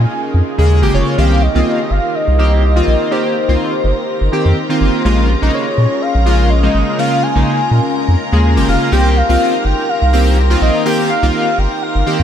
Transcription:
Already playing: analog synth pad C#4 F4 G#4 A#4, soft synth lead G#5
0.34 analog synth bass F2
0.58 analog synth bass D#2, analog polysynth C#3 G#3 A#3 G#4
0.82 analog synth bass G#1, analog polysynth C#3 G#3 A#3 G4
0.94 analog synth bass F1, analog polysynth C#3 G#3 A#3 F4, soft synth lead C#5
1.18 analog synth bass C2, analog polysynth D#3 A#3 C4 G4, analog synth pad D#4 G4 C6, string machine A#4 A#5, soft synth lead F5
1.42 soft synth lead D#5
1.55 analog synth bass C2, analog polysynth D#3 A#3 C4 F4
1.91 analog synth bass G1, soft synth lead F5
2.15 soft synth lead D#5
2.28 analog synth bass C2
2.39 analog polysynth D#3 A#3 C4 G4
2.63 soft synth lead D#5
2.76 analog polysynth D#3 A#3 C4 F4
2.87 analog synth bass A#1
3.11 analog polysynth D#3 A#3 C4 G4, soft synth lead C5
3.48 analog synth bass C2, analog polysynth D#3 A#3 C4 F4
3.84 analog synth bass G1
4.21 analog synth bass G1
4.32 analog polysynth D#3 A#3 C4 G4
4.46 analog synth bass F2
4.69 analog polysynth D#3 A#3 C4 F4
4.81 analog synth bass G1
5.05 analog synth bass A#1, analog polysynth C#3 G#3 A#3 F4, analog synth pad C#4 F4 G#4
5.42 analog synth bass A#1, analog polysynth C#3 G#3 A#3 D#4
5.54 soft synth lead C#5
5.78 analog synth bass A#2
6.02 soft synth lead F5
6.15 analog synth bass A#1
6.26 analog polysynth C#3 G#3 A#3 F4
6.50 soft synth lead D#5
6.63 analog polysynth C#3 G#3 A#3 D#4
6.75 analog synth bass G#1
6.98 analog polysynth C#3 G#3 A#3 F4, analog synth pad A#4, soft synth lead F5
7.23 soft synth lead G#5
7.35 analog synth bass A#1, analog polysynth C#3 G#3 A#3 D#4
7.71 analog synth bass A#2
8.08 analog synth bass F2
8.32 analog synth bass D#2, analog polysynth C#3 G#3 A#3 G#4
8.56 analog synth bass G#1, analog polysynth C#3 G#3 A#3 G4
8.68 analog synth bass F1, analog polysynth C#3 G#3 A#3 F4, soft synth lead F5
8.92 analog synth bass C2, analog polysynth D#3 A#3 C4 G4, analog synth pad D#4 G4, soft synth lead G5
9.17 soft synth lead F5
9.29 analog synth bass C2, analog polysynth D#3 A#3 C4 F4
9.65 analog synth bass G1, soft synth lead G5
9.89 soft synth lead F5
10.02 analog synth bass C2
10.13 analog polysynth D#3 A#3 C4 G4
10.50 analog polysynth D#3 A#3 C4 F4
10.62 analog synth bass A#1, soft synth lead D#5
10.85 analog polysynth D#3 A#3 C4 G4, soft synth lead G5
11.10 soft synth lead F5
11.23 analog synth bass C2, analog polysynth D#3 A#3 C4 F4
11.58 analog synth bass G1, soft synth lead G5
11.83 soft synth lead F5
11.95 analog synth bass G1
12.06 analog polysynth D#3 A#3 C4 G4
12.20 analog synth bass F2

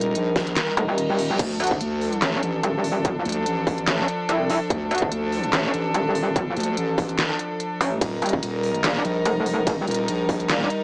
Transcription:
Already playing: wobble bass D#1, string section G3 D#4 A#4
0.01 closed hi-hat
0.15 wobble bass A#1, closed hi-hat
0.36 kick, snare, open hi-hat
0.47 closed hi-hat
0.56 snare, clap, closed hi-hat, reverse cymbal
0.77 wobble bass F1, closed hi-hat
0.88 wobble bass D#1
0.98 closed hi-hat
1.19 open hi-hat
1.39 wobble bass D2, string section F3 D4 A4, kick, closed hi-hat, crash
1.60 wobble bass D2, closed hi-hat
1.64 closed hi-hat
1.67 closed hi-hat
1.71 kick
1.81 wobble bass D2, closed hi-hat
2.01 open hi-hat
2.13 closed hi-hat
2.22 wobble bass A1, snare, clap, closed hi-hat
2.43 wobble bass A1, closed hi-hat
2.63 wobble bass D#1, closed hi-hat
2.84 open hi-hat
3.05 wobble bass D1, kick, closed hi-hat
3.25 wobble bass D2, closed hi-hat
3.29 closed hi-hat
3.32 closed hi-hat
3.46 wobble bass A1, closed hi-hat
3.67 kick, open hi-hat
3.78 closed hi-hat
3.88 wobble bass A1, snare, clap, closed hi-hat
4.08 closed hi-hat
4.29 wobble bass C2, closed hi-hat
4.50 open hi-hat
4.70 wobble bass D2, kick, closed hi-hat
4.91 wobble bass D2, closed hi-hat
4.95 closed hi-hat
4.98 closed hi-hat
5.02 kick
5.12 wobble bass D2, closed hi-hat
5.32 open hi-hat
5.44 closed hi-hat
5.53 wobble bass A1, snare, clap, closed hi-hat
5.74 wobble bass A1, closed hi-hat
5.94 wobble bass D#1, closed hi-hat
6.15 open hi-hat
6.36 wobble bass D1, kick, closed hi-hat
6.57 wobble bass D2, closed hi-hat
6.60 closed hi-hat
6.63 closed hi-hat
6.77 wobble bass A1, closed hi-hat
6.98 kick, open hi-hat
7.09 closed hi-hat
7.19 snare, clap, closed hi-hat
7.39 closed hi-hat
7.60 closed hi-hat
7.81 wobble bass A1, open hi-hat
8.01 wobble bass D#1, string section G3 D#4 A#4, kick, closed hi-hat, ride
8.22 wobble bass D#1, closed hi-hat
8.26 closed hi-hat
8.29 closed hi-hat
8.33 kick
8.43 wobble bass D#1, closed hi-hat, ride
8.63 open hi-hat
8.75 closed hi-hat
8.84 wobble bass A#1, snare, clap, closed hi-hat, ride
9.05 wobble bass A#1, closed hi-hat
9.25 wobble bass F1, closed hi-hat, ride
9.46 open hi-hat
9.67 wobble bass E1, kick, closed hi-hat, ride
9.88 wobble bass D#1, closed hi-hat
9.91 closed hi-hat
9.94 closed hi-hat
10.08 wobble bass A#1, closed hi-hat, ride
10.29 kick, open hi-hat
10.40 closed hi-hat
10.50 wobble bass A#1, snare, clap, closed hi-hat, ride
10.70 closed hi-hat

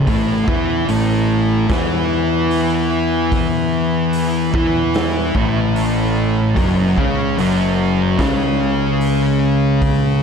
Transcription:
0.07 fingered electric bass A1, distorted electric guitar A2 A3, kick, open hi-hat
0.47 fingered electric bass E2, distorted electric guitar E3 E4, kick
0.88 fingered electric bass A1, distorted electric guitar A2 A3, open hi-hat
1.69 fingered electric bass E2, distorted electric guitar E3 E4, kick, snare, open hi-hat
2.51 open hi-hat
3.32 kick, open hi-hat
4.13 open hi-hat
4.54 fingered electric bass E2, distorted electric guitar E3 E4, kick
4.94 snare, open hi-hat
5.35 fingered electric bass A1, distorted electric guitar A2 A3, kick
5.76 open hi-hat
6.55 fingered electric bass F#1, distorted electric guitar F#2 F#3, kick, open hi-hat
6.97 fingered electric bass C#2, distorted electric guitar C#3 C#4, kick
7.37 fingered electric bass F#1, distorted electric guitar F#2 F#3, open hi-hat
8.19 fingered electric bass C#2, distorted electric guitar C#3 C#4, kick, snare, open hi-hat
9.01 open hi-hat
9.82 kick, open hi-hat

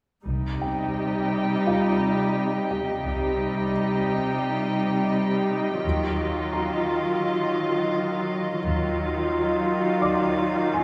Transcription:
0.25 double bass section C2, cello section C3, viola section G3 D#4, ambient pad G4 D#5 G5
0.61 grand piano G5
1.66 grand piano F4 F5
2.71 grand piano G4 G5
3.05 double bass section C2, cello section C3, viola section G3 D#4, ambient pad G4 D#5 G5
5.84 double bass section D#2, cello section D#3, viola section F#3 F4, ambient pad F4 D#5 F5
6.53 grand piano A#5
8.62 double bass section D#2, cello section D#3, viola section F#3 F4, ambient pad D#4 F4 F5
10.02 grand piano D5 D6
10.74 grand piano G#5

